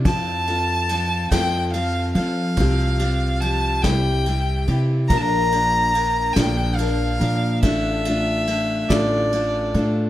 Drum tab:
RD |xxxxxx|xxxxxx|xxxxxx|xxxxxx|
SD |---o--|---o--|---o--|---o--|
BD |o--o--|o--o--|o--o--|o--o--|